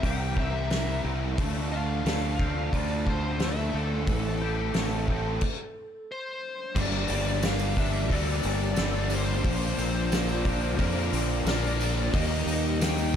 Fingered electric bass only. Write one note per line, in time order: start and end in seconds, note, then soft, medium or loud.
0.03 1.00 C2 loud
1.04 1.35 C2 medium
1.38 2.02 D2 medium
2.05 2.69 D2 medium
2.73 3.70 D2 loud
3.74 4.04 D2 medium
4.08 4.71 A1 loud
4.75 5.38 A1 medium
6.76 7.06 G1 loud
7.09 8.11 G1 loud
8.11 8.41 D2 loud
8.44 8.75 G1 loud
8.78 9.41 G1 medium
9.44 9.75 A#1 medium
9.78 10.79 A#1 medium
10.79 11.09 F2 loud
11.12 11.43 A#1 loud
11.45 12.09 A#1 medium
12.13 12.44 D#2 loud
12.46 13.16 D#2 medium